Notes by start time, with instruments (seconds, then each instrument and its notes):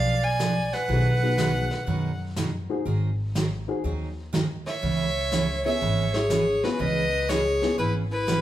Already playing: upright bass B1, steel-string acoustic guitar F3 B3 D4 G#4, clarinet D5, fiddle F5
0.23 clarinet D5, fiddle G#5
0.39 steel-string acoustic guitar F3 B3 D4 G#4, snare, hi-hat pedal
0.73 clarinet B4, fiddle F#5, snare
0.88 upright bass B1, steel-string acoustic guitar B2 D#3 F#3 B3 D#4 G#4, honky-tonk piano C4 E4 G4 A4, brush sweep
1.22 honky-tonk piano B3 D#4 F#4 G#4
1.38 steel-string acoustic guitar B2 D#3 F#3 B3 D#4 G#4, snare, hi-hat pedal
1.71 snare
1.87 upright bass F#2, steel-string acoustic guitar B2 D#3 F#3 B3 D#4 G#4, brush sweep
2.36 steel-string acoustic guitar B2 D#3 F#3 B3 D#4 G#4, snare, hi-hat pedal
2.69 honky-tonk piano C4 D#4 F#4 G#4
2.86 upright bass G#1, steel-string acoustic guitar D#3 F#3 C4 D#4 G#4, brush sweep
3.35 steel-string acoustic guitar D#3 F#3 C4 D#4 G#4, snare, hi-hat pedal
3.68 honky-tonk piano C4 D#4 F#4 G#4
3.84 upright bass D#2, steel-string acoustic guitar D#3 F#3 C4 D#4 G#4, brush sweep
4.33 steel-string acoustic guitar D#3 F#3 C4 D#4 G#4, snare, hi-hat pedal
4.66 clarinet C#5, fiddle E5, snare
4.82 upright bass C#2, steel-string acoustic guitar C#3 E3 B3 C#4 G#4, brush sweep
5.31 steel-string acoustic guitar C#3 E3 B3 C#4 G#4, snare, hi-hat pedal
5.65 honky-tonk piano B3 C#4 E4 G#4, clarinet C#5, fiddle E5
5.81 upright bass G#1, steel-string acoustic guitar C#3 E3 B3 C#4 G#4, brush sweep
6.14 clarinet G#4, fiddle C#5, snare
6.30 steel-string acoustic guitar C#3 E3 B3 C#4 G#4, snare, hi-hat pedal
6.63 honky-tonk piano B3 C#4 E4 G#4, clarinet F#4, fiddle B4, snare
6.79 upright bass C#2, steel-string acoustic guitar C#3 E3 B3 C#4 G#4, clarinet B4, fiddle D#5, brush sweep
7.28 steel-string acoustic guitar C#3 E3 B3 C#4 G#4, clarinet G#4, fiddle C#5, snare, hi-hat pedal
7.62 honky-tonk piano B3 C#4 E4 G#4, snare
7.78 upright bass G#1, steel-string acoustic guitar C#3 E3 B3 C#4 G#4, clarinet E4, fiddle B4, brush sweep
8.11 clarinet E4, fiddle B4
8.27 steel-string acoustic guitar C#3 E3 B3 C#4 G#4, snare, hi-hat pedal